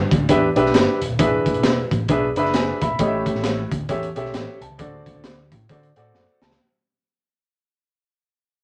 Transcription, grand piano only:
0, 0, Header, 1, 2, 480
1, 0, Start_track
1, 0, Tempo, 450789
1, 1266, Time_signature, 4, 2, 24, 8
1, 9193, End_track
2, 0, Start_track
2, 0, Title_t, "Grand piano"
2, 0, Program_c, 0, 0
2, 308, Note_on_c, 0, 62, 93
2, 316, Note_on_c, 0, 67, 81
2, 321, Note_on_c, 0, 71, 79
2, 325, Note_on_c, 0, 76, 94
2, 485, Note_off_c, 0, 62, 0
2, 489, Note_off_c, 0, 67, 0
2, 492, Note_off_c, 0, 71, 0
2, 494, Note_off_c, 0, 76, 0
2, 596, Note_on_c, 0, 62, 86
2, 601, Note_on_c, 0, 67, 78
2, 606, Note_on_c, 0, 71, 80
2, 609, Note_on_c, 0, 76, 95
2, 1031, Note_off_c, 0, 62, 0
2, 1034, Note_off_c, 0, 67, 0
2, 1036, Note_off_c, 0, 71, 0
2, 1038, Note_off_c, 0, 76, 0
2, 1266, Note_on_c, 0, 62, 83
2, 1271, Note_on_c, 0, 52, 77
2, 1273, Note_on_c, 0, 68, 72
2, 1278, Note_on_c, 0, 71, 80
2, 1280, Note_on_c, 0, 76, 100
2, 1879, Note_off_c, 0, 62, 0
2, 1883, Note_off_c, 0, 68, 0
2, 1885, Note_off_c, 0, 71, 0
2, 1886, Note_off_c, 0, 76, 0
2, 1995, Note_off_c, 0, 52, 0
2, 2226, Note_on_c, 0, 62, 92
2, 2232, Note_on_c, 0, 68, 84
2, 2235, Note_on_c, 0, 71, 76
2, 2242, Note_on_c, 0, 76, 98
2, 2404, Note_off_c, 0, 62, 0
2, 2407, Note_off_c, 0, 68, 0
2, 2409, Note_off_c, 0, 71, 0
2, 2412, Note_off_c, 0, 76, 0
2, 2521, Note_on_c, 0, 62, 85
2, 2523, Note_on_c, 0, 68, 75
2, 2525, Note_on_c, 0, 83, 80
2, 2532, Note_on_c, 0, 71, 80
2, 2540, Note_on_c, 0, 76, 104
2, 2697, Note_off_c, 0, 83, 0
2, 2713, Note_on_c, 0, 80, 76
2, 2954, Note_off_c, 0, 62, 0
2, 2954, Note_off_c, 0, 68, 0
2, 2959, Note_off_c, 0, 71, 0
2, 2963, Note_off_c, 0, 76, 0
2, 2985, Note_off_c, 0, 80, 0
2, 3006, Note_on_c, 0, 83, 69
2, 3009, Note_on_c, 0, 76, 81
2, 3179, Note_off_c, 0, 76, 0
2, 3183, Note_on_c, 0, 61, 79
2, 3188, Note_on_c, 0, 67, 76
2, 3190, Note_on_c, 0, 45, 80
2, 3192, Note_on_c, 0, 69, 75
2, 3199, Note_on_c, 0, 75, 72
2, 3257, Note_on_c, 0, 76, 98
2, 3262, Note_off_c, 0, 75, 0
2, 3457, Note_off_c, 0, 83, 0
2, 3798, Note_off_c, 0, 61, 0
2, 3800, Note_off_c, 0, 67, 0
2, 3803, Note_off_c, 0, 69, 0
2, 3835, Note_off_c, 0, 76, 0
2, 3915, Note_off_c, 0, 45, 0
2, 4140, Note_on_c, 0, 61, 93
2, 4145, Note_on_c, 0, 67, 83
2, 4147, Note_on_c, 0, 69, 78
2, 4155, Note_on_c, 0, 76, 98
2, 4321, Note_off_c, 0, 61, 0
2, 4324, Note_off_c, 0, 67, 0
2, 4325, Note_off_c, 0, 69, 0
2, 4329, Note_off_c, 0, 76, 0
2, 4423, Note_on_c, 0, 61, 78
2, 4431, Note_on_c, 0, 67, 83
2, 4437, Note_on_c, 0, 69, 80
2, 4444, Note_on_c, 0, 76, 96
2, 4625, Note_on_c, 0, 79, 69
2, 4865, Note_off_c, 0, 61, 0
2, 4869, Note_off_c, 0, 67, 0
2, 4872, Note_off_c, 0, 69, 0
2, 4875, Note_off_c, 0, 76, 0
2, 4901, Note_off_c, 0, 79, 0
2, 4916, Note_on_c, 0, 81, 63
2, 5091, Note_on_c, 0, 60, 86
2, 5097, Note_on_c, 0, 66, 75
2, 5103, Note_on_c, 0, 50, 67
2, 5103, Note_on_c, 0, 69, 73
2, 5108, Note_on_c, 0, 74, 97
2, 5372, Note_off_c, 0, 81, 0
2, 5712, Note_off_c, 0, 60, 0
2, 5715, Note_off_c, 0, 66, 0
2, 5719, Note_off_c, 0, 69, 0
2, 5721, Note_off_c, 0, 74, 0
2, 5832, Note_off_c, 0, 50, 0
2, 6059, Note_on_c, 0, 60, 90
2, 6068, Note_on_c, 0, 66, 84
2, 6073, Note_on_c, 0, 69, 73
2, 6079, Note_on_c, 0, 74, 86
2, 6241, Note_off_c, 0, 60, 0
2, 6246, Note_off_c, 0, 66, 0
2, 6248, Note_off_c, 0, 69, 0
2, 6251, Note_off_c, 0, 74, 0
2, 6345, Note_on_c, 0, 60, 83
2, 6352, Note_on_c, 0, 66, 75
2, 6352, Note_on_c, 0, 78, 74
2, 6355, Note_on_c, 0, 69, 79
2, 6364, Note_on_c, 0, 74, 89
2, 6528, Note_off_c, 0, 78, 0
2, 6544, Note_on_c, 0, 78, 73
2, 6786, Note_off_c, 0, 60, 0
2, 6790, Note_off_c, 0, 66, 0
2, 6791, Note_off_c, 0, 69, 0
2, 6796, Note_off_c, 0, 74, 0
2, 6815, Note_off_c, 0, 78, 0
2, 6836, Note_on_c, 0, 81, 75
2, 7014, Note_off_c, 0, 81, 0
2, 9193, End_track
0, 0, End_of_file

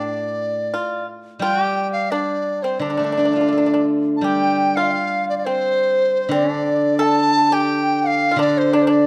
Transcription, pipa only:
0, 0, Header, 1, 2, 480
1, 0, Start_track
1, 0, Tempo, 700117
1, 25, Time_signature, 2, 2, 24, 8
1, 3384, Tempo, 692042
1, 6249, End_track
2, 0, Start_track
2, 0, Title_t, "Pipa"
2, 0, Program_c, 0, 105
2, 0, Note_on_c, 0, 62, 53
2, 474, Note_off_c, 0, 62, 0
2, 505, Note_on_c, 0, 65, 59
2, 725, Note_off_c, 0, 65, 0
2, 975, Note_on_c, 0, 65, 82
2, 1112, Note_off_c, 0, 65, 0
2, 1112, Note_on_c, 0, 67, 82
2, 1427, Note_off_c, 0, 67, 0
2, 1451, Note_on_c, 0, 62, 74
2, 1787, Note_off_c, 0, 62, 0
2, 1810, Note_on_c, 0, 60, 54
2, 1924, Note_off_c, 0, 60, 0
2, 1930, Note_on_c, 0, 62, 53
2, 1980, Note_off_c, 0, 62, 0
2, 1988, Note_on_c, 0, 62, 40
2, 2030, Note_off_c, 0, 62, 0
2, 2039, Note_on_c, 0, 62, 45
2, 2077, Note_off_c, 0, 62, 0
2, 2085, Note_on_c, 0, 62, 34
2, 2133, Note_off_c, 0, 62, 0
2, 2141, Note_on_c, 0, 62, 40
2, 2178, Note_off_c, 0, 62, 0
2, 2187, Note_on_c, 0, 62, 35
2, 2221, Note_off_c, 0, 62, 0
2, 2229, Note_on_c, 0, 62, 39
2, 2276, Note_off_c, 0, 62, 0
2, 2284, Note_on_c, 0, 62, 33
2, 2328, Note_off_c, 0, 62, 0
2, 2337, Note_on_c, 0, 62, 34
2, 2381, Note_off_c, 0, 62, 0
2, 2389, Note_on_c, 0, 62, 32
2, 2442, Note_off_c, 0, 62, 0
2, 2451, Note_on_c, 0, 62, 42
2, 2499, Note_off_c, 0, 62, 0
2, 2511, Note_on_c, 0, 62, 39
2, 2553, Note_off_c, 0, 62, 0
2, 2561, Note_on_c, 0, 62, 42
2, 2606, Note_off_c, 0, 62, 0
2, 2908, Note_on_c, 0, 67, 64
2, 3241, Note_off_c, 0, 67, 0
2, 3270, Note_on_c, 0, 65, 64
2, 3720, Note_off_c, 0, 65, 0
2, 3751, Note_on_c, 0, 60, 62
2, 4318, Note_off_c, 0, 60, 0
2, 4340, Note_on_c, 0, 60, 79
2, 4479, Note_off_c, 0, 60, 0
2, 4479, Note_on_c, 0, 62, 79
2, 4790, Note_off_c, 0, 62, 0
2, 4809, Note_on_c, 0, 69, 86
2, 5147, Note_off_c, 0, 69, 0
2, 5177, Note_on_c, 0, 67, 80
2, 5701, Note_off_c, 0, 67, 0
2, 5726, Note_on_c, 0, 65, 55
2, 5775, Note_off_c, 0, 65, 0
2, 5778, Note_on_c, 0, 62, 72
2, 6003, Note_off_c, 0, 62, 0
2, 6018, Note_on_c, 0, 62, 66
2, 6105, Note_off_c, 0, 62, 0
2, 6113, Note_on_c, 0, 62, 67
2, 6249, Note_off_c, 0, 62, 0
2, 6249, End_track
0, 0, End_of_file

